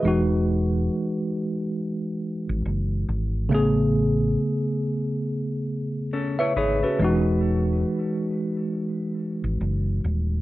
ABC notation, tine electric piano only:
X:1
M:4/4
L:1/16
Q:"Swing 16ths" 1/4=69
K:E
V:1 name="Tine electric piano"
B z12 z3 | z12 z [Be] [Gc] [FB]- | [FB] z12 z3 |]
V:2 name="Tine electric piano"
[E,G,DF]16 | [C,A,B,G]12 z4 | [E,G,DF]16 |]